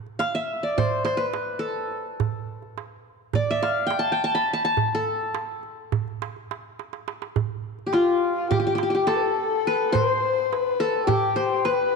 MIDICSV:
0, 0, Header, 1, 4, 480
1, 0, Start_track
1, 0, Tempo, 572519
1, 1851, Time_signature, 9, 3, 24, 8
1, 10024, End_track
2, 0, Start_track
2, 0, Title_t, "Qanun"
2, 0, Program_c, 0, 107
2, 161, Note_on_c, 0, 77, 98
2, 291, Note_on_c, 0, 76, 87
2, 342, Note_off_c, 0, 77, 0
2, 530, Note_on_c, 0, 74, 72
2, 652, Note_on_c, 0, 72, 87
2, 874, Note_off_c, 0, 72, 0
2, 877, Note_on_c, 0, 72, 88
2, 983, Note_on_c, 0, 71, 73
2, 1033, Note_off_c, 0, 72, 0
2, 1061, Note_off_c, 0, 76, 0
2, 1335, Note_on_c, 0, 69, 71
2, 1356, Note_off_c, 0, 74, 0
2, 1897, Note_off_c, 0, 71, 0
2, 2374, Note_off_c, 0, 69, 0
2, 2809, Note_on_c, 0, 74, 85
2, 2939, Note_on_c, 0, 76, 94
2, 3039, Note_on_c, 0, 77, 86
2, 3089, Note_off_c, 0, 76, 0
2, 3240, Note_on_c, 0, 79, 88
2, 3346, Note_on_c, 0, 81, 94
2, 3450, Note_off_c, 0, 79, 0
2, 3454, Note_on_c, 0, 79, 84
2, 3551, Note_off_c, 0, 81, 0
2, 3555, Note_on_c, 0, 81, 96
2, 3635, Note_off_c, 0, 74, 0
2, 3645, Note_on_c, 0, 83, 90
2, 3785, Note_off_c, 0, 77, 0
2, 3798, Note_off_c, 0, 81, 0
2, 3801, Note_on_c, 0, 81, 85
2, 3893, Note_off_c, 0, 81, 0
2, 3896, Note_on_c, 0, 81, 96
2, 4147, Note_on_c, 0, 69, 82
2, 4149, Note_off_c, 0, 79, 0
2, 4249, Note_off_c, 0, 83, 0
2, 4544, Note_off_c, 0, 81, 0
2, 5129, Note_off_c, 0, 69, 0
2, 6594, Note_on_c, 0, 67, 54
2, 6652, Note_on_c, 0, 65, 81
2, 7128, Note_off_c, 0, 67, 0
2, 7132, Note_on_c, 0, 67, 89
2, 7204, Note_off_c, 0, 67, 0
2, 7207, Note_on_c, 0, 67, 60
2, 7263, Note_off_c, 0, 67, 0
2, 7266, Note_on_c, 0, 67, 71
2, 7333, Note_off_c, 0, 67, 0
2, 7336, Note_on_c, 0, 67, 70
2, 7398, Note_off_c, 0, 67, 0
2, 7402, Note_on_c, 0, 67, 62
2, 7459, Note_off_c, 0, 67, 0
2, 7462, Note_on_c, 0, 67, 64
2, 7498, Note_off_c, 0, 67, 0
2, 7501, Note_on_c, 0, 67, 71
2, 7603, Note_on_c, 0, 69, 98
2, 7783, Note_off_c, 0, 65, 0
2, 8108, Note_on_c, 0, 71, 87
2, 8320, Note_on_c, 0, 72, 105
2, 8371, Note_off_c, 0, 71, 0
2, 8555, Note_off_c, 0, 67, 0
2, 8585, Note_off_c, 0, 69, 0
2, 9054, Note_on_c, 0, 69, 94
2, 9207, Note_off_c, 0, 72, 0
2, 9282, Note_on_c, 0, 67, 93
2, 9523, Note_on_c, 0, 72, 88
2, 9767, Note_on_c, 0, 71, 90
2, 9818, Note_off_c, 0, 72, 0
2, 10024, Note_off_c, 0, 67, 0
2, 10024, Note_off_c, 0, 69, 0
2, 10024, Note_off_c, 0, 71, 0
2, 10024, End_track
3, 0, Start_track
3, 0, Title_t, "Kamancheh"
3, 0, Program_c, 1, 110
3, 6600, Note_on_c, 1, 67, 54
3, 6661, Note_on_c, 1, 65, 67
3, 6673, Note_off_c, 1, 67, 0
3, 7003, Note_off_c, 1, 65, 0
3, 7008, Note_on_c, 1, 65, 77
3, 7121, Note_off_c, 1, 65, 0
3, 7134, Note_on_c, 1, 67, 76
3, 7608, Note_on_c, 1, 69, 70
3, 7621, Note_off_c, 1, 67, 0
3, 7672, Note_on_c, 1, 71, 63
3, 7685, Note_off_c, 1, 69, 0
3, 7727, Note_on_c, 1, 69, 81
3, 7739, Note_off_c, 1, 71, 0
3, 8342, Note_on_c, 1, 72, 90
3, 8355, Note_off_c, 1, 69, 0
3, 8822, Note_on_c, 1, 71, 84
3, 8835, Note_off_c, 1, 72, 0
3, 9273, Note_off_c, 1, 71, 0
3, 9278, Note_on_c, 1, 67, 82
3, 9764, Note_on_c, 1, 71, 92
3, 9777, Note_off_c, 1, 67, 0
3, 10024, Note_off_c, 1, 71, 0
3, 10024, End_track
4, 0, Start_track
4, 0, Title_t, "Darbuka"
4, 54, Note_on_c, 9, 62, 25
4, 138, Note_off_c, 9, 62, 0
4, 169, Note_on_c, 9, 63, 72
4, 253, Note_off_c, 9, 63, 0
4, 654, Note_on_c, 9, 64, 91
4, 738, Note_off_c, 9, 64, 0
4, 764, Note_on_c, 9, 62, 26
4, 848, Note_off_c, 9, 62, 0
4, 883, Note_on_c, 9, 63, 73
4, 967, Note_off_c, 9, 63, 0
4, 1012, Note_on_c, 9, 62, 23
4, 1096, Note_off_c, 9, 62, 0
4, 1120, Note_on_c, 9, 63, 75
4, 1203, Note_off_c, 9, 63, 0
4, 1362, Note_on_c, 9, 62, 26
4, 1446, Note_off_c, 9, 62, 0
4, 1604, Note_on_c, 9, 62, 28
4, 1688, Note_off_c, 9, 62, 0
4, 1843, Note_on_c, 9, 64, 90
4, 1927, Note_off_c, 9, 64, 0
4, 2199, Note_on_c, 9, 62, 26
4, 2283, Note_off_c, 9, 62, 0
4, 2327, Note_on_c, 9, 63, 63
4, 2411, Note_off_c, 9, 63, 0
4, 2795, Note_on_c, 9, 64, 89
4, 2879, Note_off_c, 9, 64, 0
4, 2920, Note_on_c, 9, 62, 28
4, 3004, Note_off_c, 9, 62, 0
4, 3040, Note_on_c, 9, 63, 75
4, 3124, Note_off_c, 9, 63, 0
4, 3160, Note_on_c, 9, 62, 28
4, 3244, Note_off_c, 9, 62, 0
4, 3273, Note_on_c, 9, 63, 75
4, 3357, Note_off_c, 9, 63, 0
4, 3517, Note_on_c, 9, 62, 27
4, 3601, Note_off_c, 9, 62, 0
4, 3753, Note_on_c, 9, 62, 26
4, 3837, Note_off_c, 9, 62, 0
4, 4001, Note_on_c, 9, 64, 87
4, 4084, Note_off_c, 9, 64, 0
4, 4361, Note_on_c, 9, 62, 26
4, 4445, Note_off_c, 9, 62, 0
4, 4481, Note_on_c, 9, 63, 80
4, 4565, Note_off_c, 9, 63, 0
4, 4720, Note_on_c, 9, 62, 28
4, 4804, Note_off_c, 9, 62, 0
4, 4966, Note_on_c, 9, 64, 92
4, 5050, Note_off_c, 9, 64, 0
4, 5094, Note_on_c, 9, 62, 28
4, 5178, Note_off_c, 9, 62, 0
4, 5215, Note_on_c, 9, 63, 78
4, 5299, Note_off_c, 9, 63, 0
4, 5335, Note_on_c, 9, 62, 29
4, 5419, Note_off_c, 9, 62, 0
4, 5459, Note_on_c, 9, 63, 75
4, 5542, Note_off_c, 9, 63, 0
4, 5696, Note_on_c, 9, 63, 53
4, 5780, Note_off_c, 9, 63, 0
4, 5810, Note_on_c, 9, 62, 64
4, 5894, Note_off_c, 9, 62, 0
4, 5934, Note_on_c, 9, 63, 75
4, 6018, Note_off_c, 9, 63, 0
4, 6052, Note_on_c, 9, 62, 76
4, 6136, Note_off_c, 9, 62, 0
4, 6170, Note_on_c, 9, 64, 105
4, 6254, Note_off_c, 9, 64, 0
4, 6529, Note_on_c, 9, 62, 26
4, 6613, Note_off_c, 9, 62, 0
4, 6646, Note_on_c, 9, 63, 74
4, 6730, Note_off_c, 9, 63, 0
4, 7137, Note_on_c, 9, 64, 103
4, 7221, Note_off_c, 9, 64, 0
4, 7248, Note_on_c, 9, 62, 25
4, 7332, Note_off_c, 9, 62, 0
4, 7364, Note_on_c, 9, 63, 74
4, 7448, Note_off_c, 9, 63, 0
4, 7609, Note_on_c, 9, 63, 75
4, 7693, Note_off_c, 9, 63, 0
4, 7848, Note_on_c, 9, 62, 27
4, 7932, Note_off_c, 9, 62, 0
4, 8095, Note_on_c, 9, 62, 29
4, 8178, Note_off_c, 9, 62, 0
4, 8340, Note_on_c, 9, 64, 92
4, 8424, Note_off_c, 9, 64, 0
4, 8705, Note_on_c, 9, 62, 28
4, 8789, Note_off_c, 9, 62, 0
4, 8825, Note_on_c, 9, 63, 73
4, 8909, Note_off_c, 9, 63, 0
4, 9292, Note_on_c, 9, 64, 101
4, 9376, Note_off_c, 9, 64, 0
4, 9416, Note_on_c, 9, 62, 27
4, 9500, Note_off_c, 9, 62, 0
4, 9766, Note_on_c, 9, 63, 82
4, 9850, Note_off_c, 9, 63, 0
4, 10024, End_track
0, 0, End_of_file